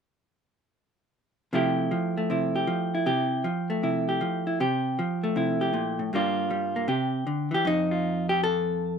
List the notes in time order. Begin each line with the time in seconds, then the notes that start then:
1.53 C3 F3 A3 E4 G4
1.91 F3
2.18 A3
2.30 C3 E4
2.56 G4
2.67 F3
2.95 E4
3.06 C3 G4
3.44 F3
3.70 A3
3.83 C3 E4
4.09 G4
4.21 F3
4.47 E4
4.60 C3 G4
4.99 F3
5.24 A3
5.36 C3 E4
5.61 G4
5.74 A#2
5.99 A2
6.13 G2 G3 A#3 D4 F4
6.50 G3
6.76 A#3
6.88 C3 G4
7.27 D3
7.51 E3 G4
7.65 F2 D#4
7.91 F4
8.29 G4
8.44 A4